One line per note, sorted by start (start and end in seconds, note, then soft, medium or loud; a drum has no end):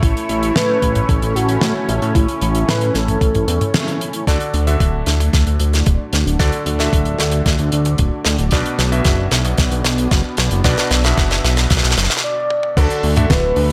0.00 0.14 A1 loud
0.00 4.24 A3 medium
0.00 4.24 C#4 medium
0.00 4.23 E4 medium
0.00 0.57 E4 loud
0.00 4.24 C#5 medium
0.00 kick loud
0.00 closed hi-hat medium
0.17 closed hi-hat medium
0.29 0.52 A1 loud
0.29 closed hi-hat medium
0.43 closed hi-hat medium
0.56 0.79 A2 medium
0.56 1.10 B4 loud
0.56 snare loud
0.56 closed hi-hat medium
0.82 1.05 A1 medium
0.82 kick medium
0.82 closed hi-hat medium
0.95 closed hi-hat medium
0.95 mid tom medium
1.09 1.20 A1 medium
1.09 1.37 A4 loud
1.09 kick loud
1.09 closed hi-hat medium
1.22 1.34 A1 medium
1.22 closed hi-hat medium
1.35 1.58 A1 medium
1.35 1.88 F#4 medium
1.35 closed hi-hat medium
1.49 closed hi-hat medium
1.61 1.73 A2 medium
1.61 snare loud
1.61 closed hi-hat medium
1.89 2.00 A1 loud
1.89 closed hi-hat medium
2.02 2.13 A2 medium
2.02 closed hi-hat medium
2.15 2.26 A1 loud
2.15 2.70 E4 loud
2.15 kick loud
2.15 closed hi-hat medium
2.28 closed hi-hat medium
2.41 2.64 A1 loud
2.41 closed hi-hat medium
2.55 closed hi-hat medium
2.68 2.91 A2 medium
2.68 2.96 B4 loud
2.68 snare loud
2.68 closed hi-hat medium
2.81 closed hi-hat medium
2.94 3.18 A1 medium
2.94 4.01 A4 loud
2.94 snare soft
2.94 closed hi-hat loud
3.08 closed hi-hat medium
3.08 mid tom medium
3.21 3.33 A1 medium
3.21 kick loud
3.21 closed hi-hat medium
3.35 3.46 A1 medium
3.35 closed hi-hat soft
3.35 mid tom medium
3.48 3.59 E2 loud
3.48 closed hi-hat medium
3.61 closed hi-hat medium
3.61 mid tom medium
3.74 snare loud
3.74 closed hi-hat medium
3.88 closed hi-hat soft
4.01 closed hi-hat medium
4.13 closed hi-hat medium
4.27 4.39 D2 loud
4.27 4.64 D3 medium
4.27 8.48 A3 medium
4.27 4.64 D4 medium
4.27 12.20 D4 medium
4.27 4.64 F#4 medium
4.27 12.20 F#4 medium
4.27 4.64 A4 medium
4.27 4.64 D5 medium
4.27 10.61 D5 medium
4.27 kick medium
4.27 snare soft
4.27 closed hi-hat medium
4.40 closed hi-hat medium
4.54 4.77 D2 loud
4.54 closed hi-hat medium
4.67 6.37 D3 medium
4.67 6.37 D4 medium
4.67 6.37 F#4 medium
4.67 6.37 A4 medium
4.67 6.37 E5 medium
4.67 closed hi-hat medium
4.80 5.03 D1 medium
4.80 kick loud
4.80 closed hi-hat medium
5.06 5.30 D2 medium
5.06 snare medium
5.06 closed hi-hat medium
5.20 closed hi-hat medium
5.20 mid tom medium
5.33 5.45 D2 medium
5.33 kick medium
5.33 snare medium
5.33 closed hi-hat medium
5.47 5.58 D2 medium
5.47 closed hi-hat soft
5.60 5.83 D2 medium
5.60 closed hi-hat medium
5.73 snare soft
5.73 closed hi-hat medium
5.86 5.98 D1 medium
5.86 kick loud
5.86 closed hi-hat medium
6.13 6.24 D2 medium
6.13 snare medium
6.13 closed hi-hat medium
6.26 6.38 D1 medium
6.26 closed hi-hat medium
6.39 6.51 D2 loud
6.39 6.76 D3 medium
6.39 6.76 D4 medium
6.39 6.76 F#4 medium
6.39 6.76 A4 medium
6.39 6.76 D5 loud
6.39 kick loud
6.39 snare medium
6.39 closed hi-hat loud
6.52 closed hi-hat medium
6.66 6.89 D2 loud
6.66 closed hi-hat medium
6.79 8.49 D3 medium
6.79 8.49 D4 medium
6.79 8.49 F#4 medium
6.79 8.49 A4 medium
6.79 8.49 E5 medium
6.79 snare soft
6.79 closed hi-hat medium
6.93 7.16 D1 medium
6.93 kick loud
6.93 closed hi-hat loud
7.05 closed hi-hat medium
7.18 7.42 D2 medium
7.18 snare medium
7.18 closed hi-hat medium
7.31 closed hi-hat medium
7.31 mid tom medium
7.46 7.57 D2 medium
7.46 kick medium
7.46 snare medium
7.46 closed hi-hat loud
7.59 7.71 D2 medium
7.59 closed hi-hat medium
7.72 7.95 D2 medium
7.72 closed hi-hat medium
7.85 closed hi-hat medium
7.85 mid tom medium
7.98 8.10 D1 medium
7.98 kick loud
7.98 closed hi-hat medium
8.25 8.37 D2 loud
8.25 snare medium
8.25 closed hi-hat medium
8.38 8.50 D1 medium
8.38 closed hi-hat medium
8.51 8.64 B1 loud
8.51 8.89 B2 medium
8.51 12.20 B3 medium
8.51 8.89 D4 medium
8.51 8.89 F#4 medium
8.51 8.89 B4 medium
8.51 8.89 D5 loud
8.51 kick loud
8.51 snare medium
8.51 closed hi-hat medium
8.66 closed hi-hat medium
8.79 9.01 B1 loud
8.79 snare medium
8.79 closed hi-hat medium
8.92 10.61 B2 medium
8.92 10.61 D4 medium
8.92 10.61 F#4 medium
8.92 10.61 B4 medium
8.92 10.61 E5 medium
8.92 closed hi-hat medium
9.04 9.28 F#1 medium
9.04 kick loud
9.04 snare medium
9.04 closed hi-hat medium
9.31 9.55 B1 medium
9.31 snare medium
9.31 closed hi-hat medium
9.45 closed hi-hat medium
9.45 mid tom medium
9.58 9.70 B1 medium
9.58 kick medium
9.58 snare medium
9.58 closed hi-hat medium
9.72 9.83 B1 medium
9.72 closed hi-hat medium
9.84 10.08 B1 medium
9.84 snare medium
9.84 closed hi-hat medium
9.98 closed hi-hat medium
10.11 10.23 F#1 medium
10.11 kick loud
10.11 snare medium
10.11 closed hi-hat medium
10.37 10.49 B1 loud
10.37 snare medium
10.37 closed hi-hat medium
10.51 10.63 F#1 medium
10.51 closed hi-hat medium
10.64 10.76 B1 loud
10.64 11.01 B2 medium
10.64 11.01 D4 medium
10.64 11.01 F#4 medium
10.64 11.01 B4 medium
10.64 11.01 D5 loud
10.64 12.22 E5 medium
10.64 kick loud
10.64 snare medium
10.64 closed hi-hat medium
10.77 snare medium
10.77 closed hi-hat soft
10.91 11.14 B1 loud
10.91 snare medium
10.91 closed hi-hat medium
11.04 12.74 B2 medium
11.04 12.74 D4 medium
11.04 12.74 F#4 medium
11.04 12.74 B4 medium
11.04 12.74 E5 medium
11.04 snare medium
11.04 closed hi-hat medium
11.17 11.40 F#1 medium
11.17 kick loud
11.17 snare loud
11.17 closed hi-hat medium
11.30 snare medium
11.30 closed hi-hat medium
11.44 11.67 B1 medium
11.44 snare medium
11.44 closed hi-hat medium
11.57 snare medium
11.57 closed hi-hat medium
11.57 mid tom medium
11.70 11.82 B1 medium
11.70 kick medium
11.70 snare medium
11.70 closed hi-hat medium
11.77 snare medium
11.83 11.96 B1 medium
11.83 snare medium
11.83 closed hi-hat medium
11.91 snare medium
11.97 12.09 F#1 loud
11.97 snare loud
11.97 closed hi-hat medium
12.03 snare medium
12.10 snare medium
12.10 closed hi-hat medium
12.10 mid tom medium
12.17 snare medium
12.24 12.78 D5 loud
12.50 high tom medium
12.63 mid tom medium
12.77 12.88 D2 loud
12.77 13.14 D3 medium
12.77 13.72 A3 medium
12.77 13.72 D4 medium
12.77 13.14 D4 medium
12.77 13.72 F#4 medium
12.77 13.14 F#4 medium
12.77 13.31 A4 loud
12.77 13.14 A4 medium
12.77 13.14 D5 loud
12.77 13.72 F#5 medium
12.77 kick loud
12.77 closed hi-hat medium
12.77 crash loud
12.90 closed hi-hat medium
13.03 13.26 D2 loud
13.03 open hi-hat medium
13.16 13.72 D3 medium
13.16 13.72 D4 medium
13.16 13.72 F#4 medium
13.16 13.72 A4 medium
13.16 13.72 E5 medium
13.16 closed hi-hat medium
13.16 mid tom medium
13.30 13.53 D1 medium
13.30 13.72 B4 loud
13.30 kick loud
13.30 snare loud
13.30 closed hi-hat medium
13.56 13.72 D2 medium
13.56 open hi-hat medium